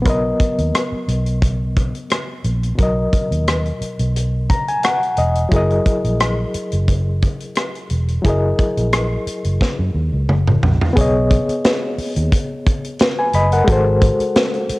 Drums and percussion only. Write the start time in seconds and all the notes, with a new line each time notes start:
0.06 kick, closed hi-hat
0.40 kick, closed hi-hat
0.58 closed hi-hat
0.74 cross-stick, closed hi-hat
1.08 closed hi-hat
1.26 closed hi-hat
1.42 kick, closed hi-hat
1.77 kick, closed hi-hat
1.95 closed hi-hat
2.10 cross-stick, closed hi-hat
2.44 closed hi-hat
2.63 closed hi-hat
2.79 kick, closed hi-hat
3.13 kick, closed hi-hat
3.32 closed hi-hat
3.48 cross-stick, closed hi-hat
3.66 closed hi-hat
3.82 closed hi-hat
3.99 closed hi-hat
4.16 closed hi-hat
4.50 kick, closed hi-hat
4.68 closed hi-hat
4.83 cross-stick, closed hi-hat
5.03 closed hi-hat
5.17 closed hi-hat
5.35 closed hi-hat
5.52 kick, closed hi-hat
5.70 closed hi-hat
5.86 kick, closed hi-hat
6.04 closed hi-hat
6.20 cross-stick, closed hi-hat
6.54 closed hi-hat
6.72 closed hi-hat
6.88 kick, closed hi-hat
7.22 kick, closed hi-hat
7.40 closed hi-hat
7.55 cross-stick, closed hi-hat
7.75 closed hi-hat
7.90 closed hi-hat
8.08 closed hi-hat
8.24 kick, closed hi-hat
8.59 kick, closed hi-hat
8.77 closed hi-hat
8.93 cross-stick, closed hi-hat
9.27 closed hi-hat
9.44 closed hi-hat
9.61 kick, snare
10.29 mid tom
10.47 mid tom
10.63 floor tom
10.81 floor tom
10.97 kick, closed hi-hat
11.31 kick, closed hi-hat
11.49 closed hi-hat
11.64 snare, closed hi-hat
11.98 open hi-hat
12.16 closed hi-hat
12.32 kick, closed hi-hat
12.66 kick, closed hi-hat
12.84 closed hi-hat
12.99 snare, closed hi-hat
13.33 closed hi-hat
13.52 closed hi-hat
13.67 kick, closed hi-hat
14.01 kick, closed hi-hat
14.20 closed hi-hat
14.36 snare, closed hi-hat
14.54 closed hi-hat
14.69 closed hi-hat